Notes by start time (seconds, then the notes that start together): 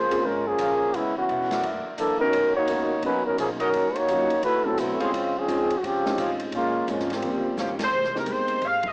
Already playing: C#2 A#2 F3 G#3 A#3 C#4 F4 G#4 C5
0.10 A#3 C4 C#4 F4 G#4, ride
0.23 G#2 A#2 F3 G#3 C#4 F4 A#4, kick
0.46 F3 A#3 C#4 G#4
0.58 A#2 F3 G#3 C#4 G#4 A#4 C#5 F5, kick, hi-hat pedal, ride
0.94 C#3 G#3 B3 C#4 E4, kick, ride
1.16 E3 B3 C#4 F#4
1.29 B2 C#3 G#3 B3 E4, kick, hi-hat pedal, ride
1.50 F#4 A#4 D5 E5, snare, ride
1.62 F#2 E3 A#3 D4, kick, ride
1.85 muted upright bass stroke
1.97 D2 F#2 E3 A#3 D4 A4, kick, hi-hat pedal, ride
2.20 F#3 B3 C#4 D#4 F#4 A#4, muted upright bass stroke
2.33 B1 B2 D#3 A#3 C#4, kick, ride
2.54 A#3 D#4 F#4 C#5, muted upright bass stroke
2.67 C#2 B2 D#3 A#3 B3 C#4 D#4 F#4 A#4, kick, hi-hat pedal, ride
3.02 D#2 B2 D#3 F#3 A#3 B3 C#4 D#4 F#4 A#4 B4, kick, ride
3.25 F#3 C#4 D#4 A#4
3.38 B1 B2 D#3 F3 A#3 C#4 G#4, kick, hi-hat pedal, ride
3.59 F#3 C#4 D#4 F#4 A#4 C#5 D#5, ride
3.73 D#2 D#3 A#3 C#4 F#4, kick, ride
3.95 A#3 D#4 F#4 C#5, ride
4.07 F#2 D#3 A#3 C#4 D#4 F4 F#4, kick, hi-hat pedal, ride
4.29 muted upright bass stroke, ride
4.43 D2 D3 A3 C4 E4 F#4 B4, kick, ride
4.65 F#3 A3 B3 C4 E4 F#4 A4
4.77 B1 D3 F#3 A3 C4 E4 F#4 B4, kick, hi-hat pedal, ride
4.99 G#3 C4 C#4 F4 G#4 C5 C#5 F5, muted upright bass stroke, ride
5.13 C#2 C#3 G#3 C4 F4, kick, ride
5.36 F3 C4 C#4 G#4
5.47 F2 C#3 G#3 C4 C#4 D#4 F4, kick, hi-hat pedal, ride
5.70 ride
5.76 F#4
5.82 G#2 C#3 F3 G#3 C4 C#4 F4 G4, kick, ride
6.05 G#3 C4 C#4 D#4 F4, snare
6.18 A2 C#3 G#3 C4 F4 G#4 C5 C#5 F5, kick, hi-hat pedal, ride
6.39 ride
6.52 A#2 G#3 A#3 C#4 F4, kick, ride
6.56 F4
6.87 G#2 A#2 F3 G#3 A#3 C4 C#4 F4, kick, hi-hat pedal, ride
6.99 snare
7.10 F3 G3 A#3 C4, snare, ride
7.21 D#2 C#3 D#3 G3 A#3 C4 C#4 F4 G4 C5, kick, ride
7.57 G2 D#3 C#4 G4 C5 C#5 F5, snare, hi-hat pedal
7.79 snare, ride
7.84 C5
7.92 C2 G#3 C4 G4 A#4
8.04 snare
8.14 G#3 A#3 C4 D#4 G4 A#4, snare
8.26 G1 G#3 C4 G4, kick, hi-hat pedal, ride
8.30 A#4 C5
8.48 ride
8.61 G#1 G#3 C4 G4 A#4, kick, ride
8.66 F5
8.83 kick, ride
8.87 D#5